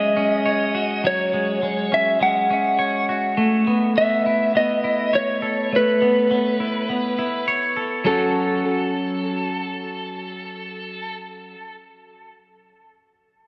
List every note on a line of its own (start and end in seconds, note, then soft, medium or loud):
0.00 0.17 F#3 soft
0.00 1.32 G#3 soft
0.00 0.16 C#4 soft
0.00 1.09 D#5 medium
0.17 1.91 C#4 soft
0.46 2.78 C#5 soft
0.75 2.21 F#4 soft
1.04 2.50 F#3 soft
1.04 1.96 C#5 medium
1.34 1.61 G#3 soft
1.62 2.19 G#3 soft
1.92 2.50 C#4 soft
1.92 2.22 E5 medium
2.20 3.38 G#3 soft
2.20 3.05 F#5 medium
2.51 3.70 C#4 soft
2.79 3.70 C#5 soft
3.09 3.38 F#4 soft
3.37 5.72 A3 soft
3.67 3.96 B3 soft
3.97 4.54 B3 soft
3.97 4.56 E5 medium
4.26 4.83 E4 soft
4.55 6.00 B3 soft
4.55 5.16 D#5 medium
4.84 6.31 E4 soft
5.13 6.60 C#5 soft
5.13 5.75 C#5 medium
5.42 6.89 A4 soft
5.73 7.19 A3 soft
5.73 7.46 B4 soft
6.02 6.30 B3 soft
6.31 6.88 B3 soft
6.60 7.17 E4 soft
6.89 8.05 B3 soft
7.19 8.06 E4 soft
7.48 8.06 C#5 soft
7.77 8.06 A4 soft
8.04 11.54 F#3 soft
8.04 11.56 C#4 soft
8.04 11.57 F#4 medium
8.04 11.17 A4 soft
8.04 11.58 A4 medium